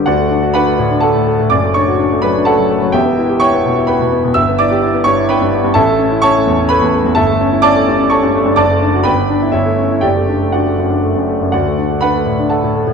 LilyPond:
<<
  \new Staff \with { instrumentName = "Grand piano" } { \time 3/4 \key d \major \tempo 4 = 126 <fis' d'' fis''>4 <b' fis'' b''>4 <a' fis'' a''>4 | <d'' d'''>8 <cis'' cis'''>4 <b' b''>8 <a' fis'' a''>4 | <g' e'' g''>4 <cis'' g'' cis'''>4 <b' g'' b''>4 | <e'' e'''>8 <d'' d'''>4 <cis'' cis'''>8 <b' g'' b''>4 |
<a' e'' a''>4 <cis'' a'' cis'''>4 <b' b''>4 | <a' e'' a''>4 <d'' a'' d'''>4 <cis'' a'' cis'''>4 | <d'' a'' d'''>4 <b' g'' b''>4 <e' cis'' e''>4 | <g' d'' g''>4 <fis' d'' fis''>4 r4 |
<fis' d'' fis''>4 <b' fis'' b''>4 <a' fis'' a''>4 | }
  \new Staff \with { instrumentName = "Grand piano" } { \time 3/4 \key d \major d,16 a16 d'16 fis'16 d'16 a16 a,16 d'16 a16 a,16 a16 a,16 | <fis,, fis,>16 a16 d'16 fis'16 d'16 a16 fis16 d'16 a16 fis16 a16 fis16 | <e,, e,>16 b16 e'16 g'16 e'16 b16 b,16 e'16 b16 b,16 b16 b,16 | g,,16 b16 e'16 g'16 e'16 b16 g,16 e'16 b16 g,16 b16 g,16 |
a,,16 a16 cis'16 e'16 cis'16 a16 e,16 cis'16 a16 e,16 a16 e,16 | g,,16 a16 cis'16 e'16 cis'16 a16 g,16 cis'16 a16 g,16 a16 g,16 | fis,,16 a16 d'16 fis'16 g,,16 b16 d'16 e'16 g,,16 a16 cis'16 e'16 | fis,,16 a16 d'16 a16 d'16 a16 fis,16 d'16 a16 fis,16 a16 fis,16 |
d,16 a16 d'16 a16 d'16 a16 a,16 d'16 a16 a,16 a16 a,16 | }
>>